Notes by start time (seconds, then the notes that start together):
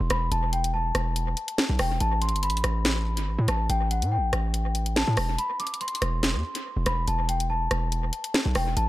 0.00 E1
0.10 E1 B5, cross-stick, closed hi-hat
0.31 E1 A5, closed hi-hat
0.53 G5, closed hi-hat
0.64 closed hi-hat
0.74 A5
0.95 E1, cross-stick, closed hi-hat
1.16 closed hi-hat
1.37 closed hi-hat
1.48 closed hi-hat
1.58 finger snap, snare
1.69 B1
1.79 E1 G5, cross-stick, open hi-hat
2.00 A1 A5, closed hi-hat
2.22 C6, closed hi-hat
2.29 closed hi-hat
2.33 G1, closed hi-hat
2.43 B5, closed hi-hat
2.48 A1, closed hi-hat
2.57 closed hi-hat
2.64 A1, cross-stick, closed hi-hat
2.85 finger snap, snare, closed hi-hat
3.17 G1, closed hi-hat
3.27 A1
3.39 A2
3.48 A1 A5, cross-stick, closed hi-hat
3.69 A1 G5, closed hi-hat
3.91 F#5, closed hi-hat
4.02 A2, closed hi-hat
4.12 G5
4.17 A1
4.33 A1, cross-stick, closed hi-hat
4.54 closed hi-hat
4.75 closed hi-hat
4.86 closed hi-hat
4.96 A5, finger snap, snare
5.08 A2
5.17 E1, cross-stick, open hi-hat
5.38 B5, closed hi-hat
5.60 D6, closed hi-hat
5.67 closed hi-hat
5.74 closed hi-hat
5.81 C6, closed hi-hat
5.88 closed hi-hat
5.95 closed hi-hat
6.02 E1, cross-stick, closed hi-hat
6.23 finger snap, snare, closed hi-hat
6.34 E2
6.55 closed hi-hat
6.77 E1
6.86 E1 B5, cross-stick, closed hi-hat
7.08 E1 A5, closed hi-hat
7.29 G5, closed hi-hat
7.40 closed hi-hat
7.50 A5
7.71 E1, cross-stick, closed hi-hat
7.92 closed hi-hat
8.13 closed hi-hat
8.24 closed hi-hat
8.34 finger snap, snare
8.46 B1
8.55 E1 G5, cross-stick, open hi-hat
8.77 A1 A5, closed hi-hat